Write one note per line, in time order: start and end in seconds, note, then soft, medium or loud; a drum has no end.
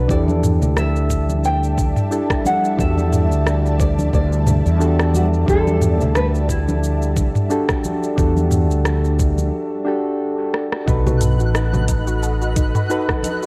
0.00 0.08 D4 medium
0.00 0.11 F#4 medium
0.00 0.11 A4 medium
0.00 0.10 B4 medium
0.08 0.62 E2 medium
0.08 9.49 G3 medium
0.08 2.07 D4 medium
0.08 2.08 E4 medium
0.08 2.08 G4 medium
0.08 2.09 A4 medium
0.08 9.49 D5 medium
0.08 0.78 D5 loud
0.08 9.50 E5 medium
0.08 9.49 A5 medium
0.08 kick loud
0.08 shaker soft
0.28 high conga medium
0.28 shaker soft
0.43 mid tom medium
0.43 shaker medium
0.62 1.92 D2 medium
0.62 low conga medium
0.62 shaker soft
0.77 1.45 E5 loud
0.77 cross-stick medium
0.77 high conga medium
0.77 shaker soft
0.96 shaker soft
1.10 kick medium
1.10 shaker medium
1.29 high conga medium
1.29 shaker soft
1.44 2.42 G5 loud
1.44 shaker soft
1.63 shaker soft
1.78 kick loud
1.78 high conga medium
1.78 shaker medium
1.96 mid tom medium
1.96 shaker soft
2.11 2.75 D4 medium
2.11 2.75 E4 medium
2.11 2.75 G4 medium
2.11 2.76 A4 medium
2.11 shaker soft
2.30 kick medium
2.30 cross-stick medium
2.30 shaker soft
2.45 2.77 F#5 medium
2.45 high conga medium
2.45 shaker medium
2.65 shaker soft
2.77 3.31 E2 medium
2.77 4.77 D4 medium
2.77 4.77 F#4 medium
2.77 4.78 G4 medium
2.77 4.78 A4 medium
2.77 3.76 E5 loud
2.77 kick loud
2.77 shaker soft
2.97 high conga medium
2.97 shaker soft
3.13 mid tom medium
3.13 shaker medium
3.31 4.10 D2 medium
3.31 shaker soft
3.46 cross-stick medium
3.46 high conga medium
3.46 shaker soft
3.66 shaker soft
3.80 4.13 D5 medium
3.80 kick loud
3.80 shaker medium
3.99 high conga medium
3.99 shaker soft
4.13 4.61 D2 medium
4.13 5.18 D5 loud
4.13 kick medium
4.13 shaker soft
4.33 shaker soft
4.47 mid tom medium
4.47 high conga medium
4.47 low conga medium
4.47 shaker medium
4.66 5.45 E2 medium
4.66 shaker soft
4.80 5.44 D4 medium
4.80 5.44 F#4 medium
4.80 5.45 G4 medium
4.80 5.45 A4 loud
4.80 shaker soft
4.99 cross-stick medium
4.99 shaker soft
5.14 5.24 F#4 medium
5.14 high conga medium
5.14 shaker medium
5.34 shaker soft
5.46 6.00 E2 loud
5.46 7.46 D4 medium
5.46 7.47 F#4 medium
5.46 7.47 G4 medium
5.46 7.48 A4 loud
5.46 6.12 A4 loud
5.46 kick loud
5.46 shaker soft
5.67 high conga medium
5.67 shaker soft
5.82 mid tom medium
5.82 shaker medium
6.00 7.31 D2 medium
6.00 low conga medium
6.00 shaker soft
6.15 6.26 B4 medium
6.15 cross-stick medium
6.15 high conga medium
6.15 shaker soft
6.35 shaker soft
6.49 9.49 E4 medium
6.49 kick medium
6.49 shaker medium
6.69 high conga medium
6.69 shaker soft
6.84 shaker soft
7.02 shaker soft
7.17 kick loud
7.17 high conga medium
7.17 shaker medium
7.35 mid tom medium
7.35 shaker soft
7.50 8.14 D4 medium
7.50 8.14 F#4 medium
7.50 8.15 G4 medium
7.50 8.15 A4 loud
7.50 shaker soft
7.69 kick medium
7.69 cross-stick medium
7.69 shaker soft
7.84 high conga medium
7.84 shaker medium
8.03 shaker soft
8.16 8.70 E2 loud
8.16 9.83 D4 medium
8.16 9.83 F#4 medium
8.16 9.84 G4 medium
8.16 9.84 A4 medium
8.16 kick loud
8.16 shaker soft
8.37 high conga medium
8.37 shaker soft
8.51 mid tom medium
8.51 shaker medium
8.70 9.49 D2 medium
8.70 shaker soft
8.85 cross-stick medium
8.85 high conga medium
8.85 shaker soft
9.04 shaker soft
9.19 kick loud
9.19 shaker medium
9.38 high conga medium
9.38 shaker soft
9.85 10.83 D4 medium
9.85 10.84 F#4 medium
9.85 10.84 G4 medium
9.85 10.85 A4 medium
10.54 cross-stick medium
10.72 cross-stick medium
10.86 11.40 B1 loud
10.86 12.86 D#4 medium
10.86 11.05 D#4 medium
10.86 12.86 F#4 medium
10.86 13.46 A4 medium
10.86 12.87 A4 medium
10.86 12.87 B4 medium
10.86 13.46 D#5 medium
10.86 13.46 F#5 medium
10.86 13.46 B5 medium
10.86 13.46 F#6 medium
10.86 kick loud
10.86 shaker soft
11.06 11.21 F#4 medium
11.06 low conga medium
11.06 shaker soft
11.21 11.38 A4 medium
11.21 closed hi-hat medium
11.21 mid tom medium
11.21 shaker medium
11.40 12.70 A1 medium
11.40 11.54 F#4 medium
11.40 shaker soft
11.55 11.72 D#4 loud
11.55 cross-stick medium
11.55 shaker soft
11.73 11.87 F#4 medium
11.73 high conga medium
11.73 low conga medium
11.73 shaker soft
11.88 12.06 D#4 medium
11.88 kick medium
11.88 closed hi-hat medium
11.88 shaker medium
12.07 12.22 F#4 medium
12.07 shaker soft
12.23 12.40 A4 medium
12.23 shaker soft
12.42 12.55 F#4 medium
12.42 shaker soft
12.56 12.73 D#4 loud
12.56 kick loud
12.56 closed hi-hat medium
12.56 shaker medium
12.75 12.89 F#4 medium
12.75 mid tom medium
12.75 shaker soft
12.89 13.46 D#4 medium
12.89 13.07 D#4 medium
12.89 13.46 F#4 medium
12.89 13.46 A4 medium
12.89 13.46 B4 loud
12.89 shaker soft
13.08 13.23 F#4 medium
13.08 kick loud
13.08 cross-stick medium
13.08 high conga medium
13.08 shaker soft
13.23 13.41 A4 medium
13.23 closed hi-hat medium
13.23 high conga medium
13.23 shaker medium
13.43 13.46 F#4 medium